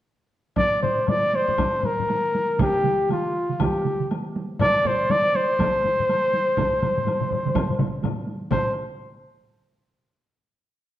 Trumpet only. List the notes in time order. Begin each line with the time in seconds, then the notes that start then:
0.57 D5
0.82 C5
1.09 D5
1.36 C5
1.86 A#4
2.61 G4
3.12 F4
3.62 G4
4.61 D5
4.87 C5
5.11 D5
5.36 C5
8.51 C5